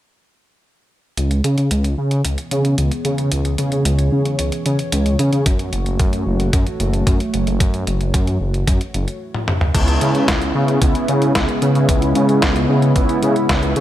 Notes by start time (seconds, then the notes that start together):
1.17 C#2 E3 B3 G#4 C#5, closed hi-hat
1.31 closed hi-hat
1.44 C#3, closed hi-hat
1.58 C#3, closed hi-hat
1.71 C#2, closed hi-hat
1.84 closed hi-hat
1.98 C#3
2.11 closed hi-hat
2.25 C#2, closed hi-hat
2.38 closed hi-hat
2.51 C#3, closed hi-hat
2.65 closed hi-hat
2.78 C#2, closed hi-hat
2.92 closed hi-hat
3.05 C#3, closed hi-hat
3.18 C#3, closed hi-hat
3.32 C#2, closed hi-hat
3.45 closed hi-hat
3.58 C#3, closed hi-hat
3.72 C#3, closed hi-hat
3.85 C#2, closed hi-hat
3.99 closed hi-hat
4.12 C#3
4.25 closed hi-hat
4.39 C#2, closed hi-hat
4.52 closed hi-hat
4.66 C#3, closed hi-hat
4.79 closed hi-hat
4.92 C#2, closed hi-hat
5.06 closed hi-hat
5.19 C#3, closed hi-hat
5.33 C#3, closed hi-hat
5.46 F#2 A3 F#4, kick, closed hi-hat
5.59 closed hi-hat
5.73 F#1, closed hi-hat
5.86 F#1, closed hi-hat
5.99 F#2, kick, closed hi-hat
6.13 closed hi-hat
6.27 F#1
6.40 closed hi-hat
6.53 F#2, kick, closed hi-hat
6.67 closed hi-hat
6.80 F#1, closed hi-hat
6.93 closed hi-hat
7.07 F#2, kick, closed hi-hat
7.20 closed hi-hat
7.34 F#1, closed hi-hat
7.47 F#1, closed hi-hat
7.60 F#2, kick, closed hi-hat
7.74 closed hi-hat
7.87 F#1, closed hi-hat
8.01 F#1, closed hi-hat
8.14 F#2, kick, closed hi-hat
8.27 closed hi-hat
8.41 F#1
8.54 closed hi-hat
8.67 F#2, kick, closed hi-hat
8.81 closed hi-hat
8.94 F#1, closed hi-hat
9.08 closed hi-hat
9.34 high tom
9.48 mid tom
9.61 mid tom
9.75 C#2 C#3 G#3 B3 C#4 E4, kick, closed hi-hat, crash
9.88 closed hi-hat
10.01 C#3, closed hi-hat
10.15 C#3, closed hi-hat
10.28 C#2, kick, snare, closed hi-hat
10.42 closed hi-hat
10.55 C#3
10.68 closed hi-hat
10.82 C#2 B3 C#4 E4, kick, closed hi-hat
10.95 closed hi-hat
11.08 C#3, closed hi-hat
11.22 closed hi-hat
11.35 C#2, kick, snare, closed hi-hat
11.49 closed hi-hat
11.62 C#3 B3 C#4 E4, closed hi-hat
11.75 C#3, closed hi-hat
11.89 C#2 B3 C#4 E4, kick, closed hi-hat
12.02 closed hi-hat
12.15 C#3, closed hi-hat
12.29 C#3, closed hi-hat
12.42 C#2, kick, snare, closed hi-hat
12.56 closed hi-hat
12.69 C#3
12.82 closed hi-hat
12.96 C#2 B3 C#4 E4, kick, closed hi-hat
13.09 closed hi-hat
13.23 C#3, closed hi-hat
13.36 closed hi-hat
13.49 C#2, kick, snare, closed hi-hat
13.63 closed hi-hat
13.76 C#3 B3 C#4 E4, closed hi-hat